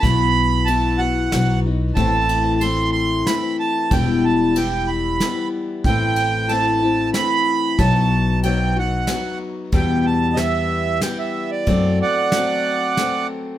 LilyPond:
<<
  \new Staff \with { instrumentName = "Accordion" } { \time 3/4 \key e \minor \tempo 4 = 93 b''4 a''8 fis''4 r8 | a''4 c'''8 c'''8 b''8 a''8 | g''8 a''8 g''8 b''4 r8 | g''4 a''4 b''4 |
a''4 g''8 fis''4 r8 | g''8 a''8 <dis'' e''>4 g''16 e''8 d''16~ | d''8 <d'' fis''>2 r8 | }
  \new Staff \with { instrumentName = "Steel-string acoustic guitar" } { \time 3/4 \key e \minor <b, e b e' fis'>4 <e b e' fis'>8 <b e' fis'>8 <fis b dis' fis'>8 <b dis' fis'>8 | <a, e a c' e'>4 <e a c' e'>4 <e a c' e'>4 | <e, b, e g b e'>4 <e g b e'>4 <e g b e'>4 | <a, e a c' e'>4 <e a c' e'>8 <a c' e'>8 <e a c' e'>4 |
<b, fis b dis' fis'>4 <fis b dis'>8 <b dis' fis'>8 <fis b dis' fis'>4 | <e, b, e g b g'>4 <e g b g'>4 <e g b g'>4 | <fis a c' fis'>4 <fis a c' fis'>4 <fis a c' fis'>4 | }
  \new Staff \with { instrumentName = "Upright bass" } { \clef bass \time 3/4 \key e \minor b,,2 b,,4 | a,,2 r4 | e,,2 r4 | a,,2 r4 |
b,,2 r4 | e,2 r4 | fis,8 r2 r8 | }
  \new DrumStaff \with { instrumentName = "Drums" } \drummode { \time 3/4 <bd cymr>4 cymr4 <cymr sn>4 | <bd cymr>8 cymr8 cymr4 <cymr sn>4 | <bd cymr>4 cymr4 <cymr sn>4 | <bd cymr>8 cymr8 cymr4 <cymr sn>4 |
<bd cymr>4 cymr4 <cymr sn>4 | <bd cymr>4 <cymr sn>4 <cymr sn>4 | <bd cymr>4 <cymr sn>4 <cymr sn>4 | }
>>